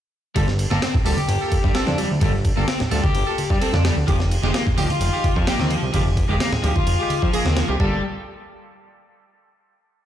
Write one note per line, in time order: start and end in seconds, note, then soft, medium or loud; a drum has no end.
0.35 0.67 G1 loud
0.35 0.45 G3 loud
0.35 0.47 A#3 medium
0.35 0.47 F4 medium
0.35 0.47 G4 medium
0.35 0.47 A4 medium
0.35 kick loud
0.35 ride medium
0.35 high conga loud
0.48 snare soft
0.59 ride medium
0.70 0.80 G1 medium
0.70 0.81 A#3 medium
0.70 0.80 A#3 loud
0.70 0.81 F4 medium
0.70 0.81 G4 medium
0.70 0.81 A4 loud
0.70 snare soft
0.70 high conga medium
0.82 0.92 C4 medium
0.82 snare loud
0.82 ride medium
0.94 kick loud
0.94 low conga medium
1.05 1.15 D2 medium
1.05 1.15 G3 medium
1.05 1.16 A#3 medium
1.05 1.16 F4 medium
1.05 1.16 G4 medium
1.05 1.16 A4 medium
1.05 open hi-hat medium
1.17 1.63 G4 medium
1.17 ride soft
1.17 high conga loud
1.28 1.38 G1 loud
1.28 ride medium
1.41 1.57 A#3 medium
1.41 1.57 F4 medium
1.41 1.57 G4 medium
1.41 1.57 A4 medium
1.52 kick medium
1.52 ride medium
1.52 high conga medium
1.64 1.73 G2 medium
1.64 1.74 G3 medium
1.64 kick loud
1.75 1.92 A#3 medium
1.75 1.85 C4 medium
1.75 1.92 F4 medium
1.75 1.92 G4 medium
1.75 1.92 A4 medium
1.75 snare loud
1.75 ride medium
1.87 2.05 F2 loud
1.87 1.97 D4 medium
1.87 snare soft
1.87 high conga medium
1.98 2.08 G3 medium
1.98 ride medium
2.11 2.19 D2 medium
2.21 2.53 G1 loud
2.21 2.31 G3 loud
2.21 2.33 A#3 medium
2.21 2.33 F4 medium
2.21 2.33 G4 medium
2.21 2.33 A4 medium
2.21 kick loud
2.21 ride medium
2.21 high conga loud
2.45 kick loud
2.45 ride medium
2.57 2.66 G1 medium
2.57 2.66 A#3 loud
2.57 2.67 A#3 medium
2.57 2.67 F4 medium
2.57 2.67 G4 medium
2.57 2.67 A4 loud
2.57 high conga medium
2.68 2.78 C4 medium
2.68 snare loud
2.68 ride medium
2.80 snare medium
2.80 low conga medium
2.91 3.01 D2 medium
2.91 3.01 G3 medium
2.91 3.02 A#3 medium
2.91 3.02 F4 medium
2.91 3.02 G4 medium
2.91 3.02 A4 loud
2.91 ride medium
3.04 3.49 G4 medium
3.04 kick loud
3.04 high conga loud
3.15 3.24 G1 loud
3.15 ride medium
3.27 3.43 A#3 medium
3.27 3.43 F4 medium
3.27 3.43 G4 medium
3.27 3.43 A4 medium
3.38 ride medium
3.38 high conga medium
3.50 3.59 G2 medium
3.50 3.60 G3 medium
3.50 kick loud
3.61 3.78 A#3 medium
3.61 3.71 C4 medium
3.61 3.78 F4 medium
3.61 3.78 G4 medium
3.61 3.78 A4 loud
3.61 ride medium
3.73 3.91 F2 loud
3.73 3.83 D4 medium
3.73 snare medium
3.73 high conga loud
3.85 3.94 G3 medium
3.85 snare loud
3.85 ride medium
3.97 4.05 D2 medium
4.08 4.39 F1 loud
4.08 7.76 D#3 medium
4.08 4.17 F3 loud
4.08 7.76 G#3 medium
4.08 4.19 G#3 medium
4.08 4.19 D#4 medium
4.08 7.76 F4 medium
4.08 4.19 F4 medium
4.08 5.92 G4 medium
4.08 4.19 G4 medium
4.08 kick loud
4.08 ride medium
4.08 high conga medium
4.20 snare soft
4.31 ride medium
4.43 4.52 F1 medium
4.43 4.53 G#3 medium
4.43 4.52 G#3 loud
4.43 4.53 D#4 medium
4.43 4.53 F4 medium
4.43 4.53 G4 loud
4.43 snare soft
4.43 high conga medium
4.54 4.64 A#3 medium
4.54 snare loud
4.54 ride medium
4.67 kick loud
4.67 low conga medium
4.78 4.87 D2 medium
4.78 4.87 F3 medium
4.78 4.88 G#3 medium
4.78 4.89 D#4 medium
4.78 4.88 F4 medium
4.78 4.89 G4 loud
4.78 open hi-hat medium
4.90 5.35 F4 medium
4.90 ride soft
4.90 high conga loud
5.01 5.10 F1 loud
5.01 ride medium
5.13 5.29 G#3 medium
5.13 5.29 D#4 medium
5.13 5.29 F4 medium
5.13 5.29 G4 medium
5.24 kick loud
5.24 ride medium
5.24 high conga medium
5.36 5.45 F2 medium
5.36 5.46 F3 medium
5.36 kick loud
5.47 5.64 G#3 medium
5.47 5.57 A#3 medium
5.47 5.64 D#4 medium
5.47 5.64 F4 medium
5.47 5.64 G4 loud
5.47 snare loud
5.47 ride medium
5.59 5.77 D#2 loud
5.59 5.70 C4 medium
5.59 snare soft
5.59 high conga medium
5.70 5.80 F3 medium
5.70 ride medium
5.83 5.91 C2 medium
5.94 6.25 F1 loud
5.94 6.03 F3 loud
5.94 6.05 G#3 medium
5.94 6.05 D#4 medium
5.94 6.05 F4 medium
5.94 6.05 G4 medium
5.94 7.79 G#4 medium
5.94 kick loud
5.94 ride medium
5.94 high conga medium
6.17 kick loud
6.17 ride medium
6.29 6.38 F1 medium
6.29 6.38 G#3 loud
6.29 6.39 G#3 medium
6.29 6.39 D#4 medium
6.29 6.39 F4 medium
6.29 6.39 G4 loud
6.29 high conga medium
6.40 6.50 A#3 medium
6.40 snare loud
6.40 ride medium
6.52 snare medium
6.52 low conga medium
6.64 6.73 D2 medium
6.64 6.73 F3 medium
6.64 6.74 G#3 medium
6.64 6.74 D#4 medium
6.64 6.74 F4 medium
6.64 6.74 G4 loud
6.64 ride medium
6.76 7.21 F4 medium
6.76 kick loud
6.76 high conga medium
6.87 6.96 F1 loud
6.87 ride medium
6.99 7.15 G#3 medium
6.99 7.15 D#4 medium
6.99 7.15 F4 medium
6.99 7.15 G4 medium
7.10 ride medium
7.10 high conga medium
7.22 7.31 F2 medium
7.22 7.32 F3 medium
7.22 kick loud
7.33 7.50 G#3 medium
7.33 7.43 A#3 medium
7.33 7.50 D#4 medium
7.33 7.50 F4 medium
7.33 7.50 G#4 medium
7.33 ride medium
7.45 7.63 D#2 loud
7.45 7.56 C4 medium
7.45 snare medium
7.45 high conga medium
7.57 7.66 F3 medium
7.57 snare loud
7.57 ride medium
7.69 7.77 C2 medium
7.69 7.78 G#3 medium
7.69 7.78 D#4 medium
7.69 7.78 F4 medium
7.69 7.78 G4 loud
7.80 8.02 G1 loud
7.80 8.02 A#2 medium
7.80 8.02 G3 medium
7.80 8.02 A3 medium
7.80 7.97 A#3 medium
7.80 7.97 F4 medium
7.80 8.02 F4 medium
7.80 7.97 G4 medium
7.80 8.02 G4 medium
7.80 7.97 A4 loud
7.80 kick loud